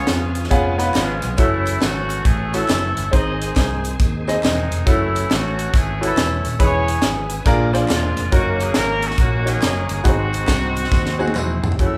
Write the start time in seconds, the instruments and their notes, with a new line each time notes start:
Already playing: grand piano C#3 B3 C#4 F4 G#4, tonewheel organ F3 B3 C#4 G#4, horn section F4 G#4
0.07 fingered electric bass F2, snare, clap, closed hi-hat, tambourine
0.35 closed hi-hat, tambourine
0.44 snare
0.50 fingered electric bass F1, tonewheel organ F3 B3 C#4 G#4, grand piano B3 C#4 F4 G#4, kick, closed hi-hat, tambourine
0.78 grand piano B3 C#4 D#4 B4, snare, closed hi-hat, tambourine
0.83 grand piano F4
0.94 fingered electric bass G#1, horn section G#3 B3 F4, snare, clap, closed hi-hat, tambourine
1.22 fingered electric bass B1, closed hi-hat, tambourine
1.37 fingered electric bass F#1, tonewheel organ E3 A3 C#4 E4, horn section A3 C#4 E4, grand piano C#4 E4 F#4 A4, kick, closed hi-hat, tambourine
1.45 tonewheel organ F#4
1.65 closed hi-hat, tambourine
1.81 fingered electric bass G#1, horn section A3 C#4 F#4, snare, clap, closed hi-hat, tambourine
2.09 closed hi-hat, tambourine
2.24 fingered electric bass A1, horn section C#4 E4 G#4, kick, closed hi-hat, tambourine
2.52 grand piano C#4 E4 F#4 A4, horn section C#4 E4 A4, snare, closed hi-hat, tambourine
2.68 fingered electric bass F#1, snare, clap, closed hi-hat, tambourine
2.97 fingered electric bass G1, closed hi-hat, tambourine
3.12 fingered electric bass G#1, grand piano G#2 C4 D#4 G#4 C5, tonewheel organ D#3 G#3 C4 G#4, horn section G#4 C5 D#5, kick, closed hi-hat, tambourine
3.41 closed hi-hat, tambourine
3.56 fingered electric bass C2, kick, snare, clap, closed hi-hat, tambourine
3.84 closed hi-hat, tambourine
4.00 fingered electric bass D#2, kick, closed hi-hat, tambourine
4.27 grand piano C4 D#4 G#4 D#5, snare, closed hi-hat, tambourine
4.43 fingered electric bass E1, horn section G#3 C4 D#4, snare, clap, closed hi-hat, tambourine
4.71 fingered electric bass F1, closed hi-hat, tambourine
4.85 fingered electric bass F#1, tonewheel organ E3 G#3 C#4 F#4, horn section A3 C#4 E4, grand piano C#4 E4 F#4 A4, kick, closed hi-hat, tambourine
4.90 tonewheel organ A3
5.15 closed hi-hat, tambourine
5.31 fingered electric bass A1, horn section A3 C#4 F#4, snare, clap, closed hi-hat, tambourine
5.59 closed hi-hat, tambourine
5.74 fingered electric bass G#1, horn section C#4 E4 G#4, kick, closed hi-hat, tambourine
6.01 grand piano C#4 E4 F#4 A4, horn section C#4 E4 A4, closed hi-hat, tambourine
6.07 grand piano B4
6.17 fingered electric bass E1, snare, clap, closed hi-hat, tambourine
6.44 fingered electric bass D#1, closed hi-hat, tambourine
6.59 fingered electric bass E1, grand piano E3 C#4 D#4 G#4 B4, tonewheel organ E3 B3 C#4 G#4, horn section G#4 C#5, kick, closed hi-hat, tambourine
6.65 grand piano E4
6.88 closed hi-hat, tambourine
7.02 fingered electric bass G#1, snare, clap, closed hi-hat, tambourine
7.30 closed hi-hat, tambourine
7.46 fingered electric bass A#1, grand piano A#2 D4 F4 G#4 A#4, tonewheel organ F3 A#3 D4 G#4, kick, closed hi-hat, tambourine
7.73 grand piano D4 F4 G#4 C5, snare, closed hi-hat, tambourine
7.88 fingered electric bass E1, horn section G#3 D4 F4, snare, clap, closed hi-hat, tambourine
8.16 fingered electric bass F1, closed hi-hat, tambourine
8.32 fingered electric bass F#1, tonewheel organ D#3 A#3 C#4 F#4, horn section A#3 C#4 F#4, grand piano C#4 D#4 F#4 A#4, kick, closed hi-hat, tambourine
8.60 horn section G#4, closed hi-hat, tambourine
8.74 fingered electric bass G#1, horn section A#4, snare, clap, closed hi-hat, tambourine
9.02 horn section F#4, closed hi-hat, tambourine
9.11 snare
9.18 fingered electric bass A#1, horn section A#3 C#4 F#4, kick, closed hi-hat, tambourine
9.45 grand piano C#4 D#4 F#4 C#5, horn section C#4 D#4 G#4, snare, closed hi-hat, tambourine
9.62 fingered electric bass F#1, snare, clap, closed hi-hat, tambourine
9.89 fingered electric bass G1, horn section G#4, closed hi-hat, tambourine
10.03 fingered electric bass G#1, grand piano G#2 B3 D#4 F#4 G#4, tonewheel organ C3 G#3 C4 F#4, horn section C4 D#4 F#4, kick, closed hi-hat, tambourine
10.09 grand piano C4
10.33 closed hi-hat, tambourine
10.47 fingered electric bass C2, kick, snare, clap, closed hi-hat, tambourine
10.75 closed hi-hat, tambourine
10.84 snare
10.92 fingered electric bass D#2, kick, snare, tambourine
11.06 snare
11.19 grand piano C4 D#4 F#4 G#4, tambourine
11.28 high tom
11.35 fingered electric bass E1, horn section C4 E4, clap, mid tom, tambourine
11.64 fingered electric bass F1, floor tom, tambourine
11.72 floor tom
11.78 fingered electric bass F#1, horn section A3 C#4 E4, grand piano C#4 E4 F#4 G#4, string section F#5 A5 C#6 E6, kick, closed hi-hat
11.86 grand piano A4